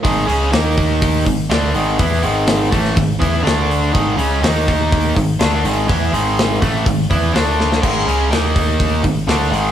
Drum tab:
CC |----------------|----------------|----------------|----------------|
HH |o-o-o-o-o-o-o-o-|o-o-o-o-o-o-o-o-|o-o-o-o-o-o-o-o-|o-o-o-o-o-o-o---|
SD |----o-------o---|----o--o----o---|----o-------o---|----o-------o-oo|
BD |o-----o-o-o-----|o-----o-o-o-----|o-----o-o-o-----|o-----o-o-o-----|

CC |x---------------|
HH |--o-o-o-o-o-o-o-|
SD |----o-------o---|
BD |o-----o-o-o-----|